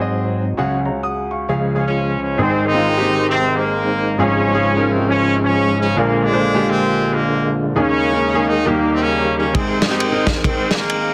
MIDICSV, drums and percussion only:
0, 0, Header, 1, 2, 480
1, 0, Start_track
1, 0, Key_signature, -4, "major"
1, 0, Tempo, 448430
1, 620, Time_signature, 4, 2, 24, 8
1, 11921, End_track
2, 0, Start_track
2, 0, Title_t, "Drums"
2, 10218, Note_on_c, 9, 53, 81
2, 10220, Note_on_c, 9, 36, 123
2, 10325, Note_off_c, 9, 53, 0
2, 10327, Note_off_c, 9, 36, 0
2, 10507, Note_on_c, 9, 53, 52
2, 10511, Note_on_c, 9, 38, 109
2, 10614, Note_off_c, 9, 53, 0
2, 10618, Note_off_c, 9, 38, 0
2, 10705, Note_on_c, 9, 53, 78
2, 10812, Note_off_c, 9, 53, 0
2, 10990, Note_on_c, 9, 38, 114
2, 10991, Note_on_c, 9, 36, 94
2, 10993, Note_on_c, 9, 53, 46
2, 11097, Note_off_c, 9, 38, 0
2, 11098, Note_off_c, 9, 36, 0
2, 11100, Note_off_c, 9, 53, 0
2, 11179, Note_on_c, 9, 36, 112
2, 11182, Note_on_c, 9, 53, 80
2, 11286, Note_off_c, 9, 36, 0
2, 11289, Note_off_c, 9, 53, 0
2, 11462, Note_on_c, 9, 38, 120
2, 11464, Note_on_c, 9, 53, 60
2, 11569, Note_off_c, 9, 38, 0
2, 11571, Note_off_c, 9, 53, 0
2, 11662, Note_on_c, 9, 53, 67
2, 11769, Note_off_c, 9, 53, 0
2, 11921, End_track
0, 0, End_of_file